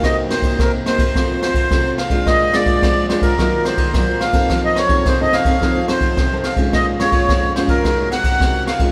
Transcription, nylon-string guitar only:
\new Staff \with { instrumentName = "Nylon-string guitar" } { \time 4/4 \key bes \minor \tempo 4 = 108 << { <bes ees' ges'>8 <bes ees' ges'>8. r16 <bes ees' ges'>16 r16 <a c' f'>8. r16 <a c' f'>8 r16 <aes d' f'>16~ | <aes d' f'>8 <aes d' f'>4 <aes d' f'>8 <ges bes f'>8. r16 <ges bes f'>8 r16 <c' ees' a'>16~ | <c' ees' a'>8 r16 <c' ees' a'>8 <c' ees' a'>8 <c' ees' a'>16 <c' ees' a'>16 r16 <c' ees' a'>8. <c' ees' a'>8 <aes des' f'>16~ | <aes des' f'>8 <aes des' f'>4 <aes des' f'>8 <aes ees' ges'>8. r16 <aes ees' ges'>8 r16 <aes des' f'>16 | } \\ { c4 c4 f4 c4 | bes,4 f4 ees4 bes,4 | f4 c4 f4 c4 | bes,4 f,4 c4 c4 | } >> }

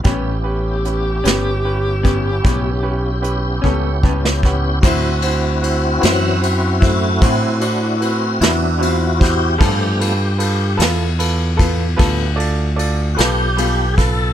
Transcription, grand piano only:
\new Staff \with { instrumentName = "Grand piano" } { \time 12/8 \key a \dorian \tempo 4. = 50 <cis' g' b'>8 <cis' g' b'>8 <cis' g' b'>8 <cis' g' b'>8 <cis' g' b'>8 <cis' g' b'>8 <cis' g' b'>8 <cis' g' b'>8 <cis' g' b'>8 <cis' g' a'>8 <cis' g' b' a''>8 <cis' g' b' fis''>8 | <e' fis' c''>8 <e' fis' c''>8 <e' fis' c''>8 <e' fis' c''>8 <e' fis' c''>8 <e' fis' c''>8 <e' fis' c''>8 <e' fis' c''>8 <e' fis' b'>8 <e' fis' b'>8 <e' fis' c''>8 <e' fis' c''>8 | <f' a' b'>8 <f' a' b'>8 <f' a' b'>8 <f' a' b'>8 <f' a' b'>8 <f' a' b'>8 <f' a' b'>8 <f' a' d''>8 <f' a' d''>8 <f' a' b'>8 <f' a' b'>8 <f' a' b'>8 | }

